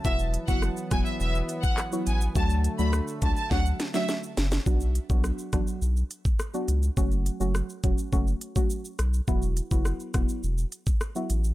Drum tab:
HH |--x---x---x---x-|--x---x---x---x-|--x---x---x---x-|--x---x---x---x-|
SH |xxxxxxxxxxxxxxxx|xxxxxxxxxxxxxxxx|xxxxxxxxxxxxxxxx|xxxxxxxxxxxxxxxx|
CP |------------x---|----------------|----------------|----------------|
SD |----r-r-----r---|----r---o-ooo-oo|----r-r-----r---|----r---------r-|
BD |o--o--o----o----|o-----o-o-------|o--o--o----o----|o-----o-o--o----|

HH |--x---x---x---x-|
SH |xxxxxxxxxxxxxxxx|
CP |----------------|
SD |----r-r-----r---|
BD |o--o--o----o----|